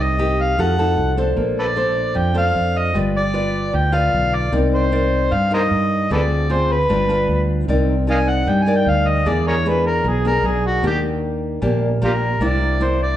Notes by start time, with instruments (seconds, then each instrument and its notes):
Already playing: fretless electric bass C2, nylon-string guitar C3 A#3 D#4 G4
0.03 harmonica D#5
0.19 nylon-string guitar A#3 D#4 G4
0.41 harmonica F5
0.58 fretless electric bass F2, nylon-string guitar F3 D#4 F#4 A4, harmonica F#5
0.78 nylon-string guitar D#4 F#4 A4
0.98 fretless electric bass C2
1.17 nylon-string guitar D4 A4 C5
1.37 fretless electric bass A#1, nylon-string guitar A#3
1.59 harmonica A4 B4 D5
1.76 nylon-string guitar D4 A4 C5
2.15 fretless electric bass F2, nylon-string guitar F3, harmonica G5
2.34 nylon-string guitar D4 A4 C5, harmonica F5
2.55 fretless electric bass F2
2.78 harmonica D#5
2.94 fretless electric bass G1, nylon-string guitar G3 F4 B4 D5
3.17 harmonica D5
3.34 nylon-string guitar F4 B4 D5
3.73 fretless electric bass D2, nylon-string guitar D3, harmonica G5
3.92 nylon-string guitar F4 B4 D5, harmonica F5
4.13 fretless electric bass B1
4.35 harmonica D5
4.52 fretless electric bass C2, nylon-string guitar C4 D#4 A#4 D5
4.74 harmonica C5
4.92 nylon-string guitar D#4 A#4 D5
5.32 fretless electric bass G2, nylon-string guitar G3, harmonica F5
5.51 nylon-string guitar D#4 A#4, harmonica A#4 C5 D#5
5.71 fretless electric bass G2
6.10 fretless electric bass D2, nylon-string guitar D3 C4 F4 G#4, harmonica A4 B4 D5
6.50 nylon-string guitar C4 F4 G#4, harmonica C5
6.72 harmonica B4
6.89 fretless electric bass G1, nylon-string guitar G3 D4 F4 B4
7.09 nylon-string guitar D4 F4 B4
7.29 fretless electric bass D2
7.68 fretless electric bass C2, nylon-string guitar C4 D#4 A#4 D5
8.07 nylon-string guitar D#4 A#4 D5, harmonica D#5 F5 G#5
8.29 harmonica F#5
8.47 fretless electric bass G2, nylon-string guitar G3, harmonica G5
8.63 nylon-string guitar D#4, harmonica G#5
8.67 nylon-string guitar A#4 D5
8.76 harmonica G5
8.86 fretless electric bass D2, harmonica F5
9.08 harmonica D#5
9.26 fretless electric bass E2, nylon-string guitar E3 A#3 D4 G#4, harmonica D5
9.48 harmonica G#4 A#4 C#5
9.66 nylon-string guitar A#3 D4 G#4, harmonica B4
9.86 harmonica A#4
10.04 fretless electric bass B1, nylon-string guitar B2, harmonica G#4
10.25 nylon-string guitar A#3 D4 G#4, harmonica A#4
10.43 fretless electric bass B1, harmonica G#4
10.66 harmonica F#4
10.83 fretless electric bass D#2, nylon-string guitar D#3 A#3 D4 G4
10.87 harmonica G4
11.62 fretless electric bass A#1, nylon-string guitar A#2 A#3 D4 G4
12.02 fretless electric bass A#1, nylon-string guitar A#3 D4 G4, harmonica F4 G4 A#4
12.41 fretless electric bass C2, nylon-string guitar C3 A#3 D4 E4, harmonica D5
12.80 nylon-string guitar A#3 D4 E4, harmonica C5
13.03 harmonica D5